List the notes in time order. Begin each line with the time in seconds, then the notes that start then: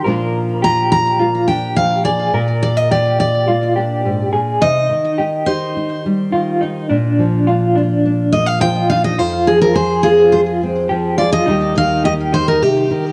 0.04 A#2 F3 A#3 D4 F4 A#4
0.62 F4 G4 A#5
0.92 A#5
1.19 A#3 F4
1.48 D4 G4 G5
1.76 F3 F5
2.05 G#4 D5
2.34 A#2 A#4
2.63 D5
2.77 D#5
2.91 F4 G4 D5
3.20 D5
3.48 A#3 F4
3.76 D4 G4
4.05 G#2
4.32 A#2 G#4
4.61 C3 D#4 D#5
4.89 D#3
5.18 D#4 G4
5.46 D#4 G4 C5
5.77 D#4
6.06 G3
6.32 D#3 F4
6.61 D#4
6.90 A#2 D4
7.19 F3
7.47 D4 F4
7.75 D4 F4
8.06 D4
8.32 A#3 D#5
8.46 F5
8.61 F3 F4 G5
8.90 D4 D#4 F5
9.04 D#5
9.19 F2 F4 C5
9.47 F3 G#4
9.61 A#4
9.75 G#4 C5
10.03 C4 F4 G#4
10.32 G#4 C5
10.63 C4
10.89 F3 G4
11.18 F4 G#4 D5
11.32 D#5
11.46 D#2 D#3 G3 A#3 D#4 G4
11.77 D#3 F5
12.04 A#3 G4 D#5
12.32 D#4 G4 C5
12.48 A#4
12.62 C3 G4
12.91 D#3